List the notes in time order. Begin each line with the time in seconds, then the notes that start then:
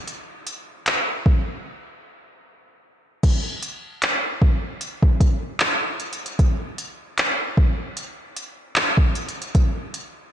0.08 closed hi-hat
0.47 closed hi-hat
0.86 clap, closed hi-hat
1.26 kick
3.23 kick, closed hi-hat, crash
3.63 closed hi-hat
4.02 clap, closed hi-hat
4.42 kick
4.81 closed hi-hat
5.03 kick
5.20 kick, closed hi-hat
5.60 clap, closed hi-hat
6.00 closed hi-hat
6.13 closed hi-hat
6.26 closed hi-hat
6.39 kick, closed hi-hat
6.78 closed hi-hat
7.18 clap, closed hi-hat
7.57 kick
7.97 closed hi-hat
8.37 closed hi-hat
8.76 clap, closed hi-hat
8.97 kick
9.15 closed hi-hat
9.29 closed hi-hat
9.42 closed hi-hat
9.55 kick, closed hi-hat
9.94 closed hi-hat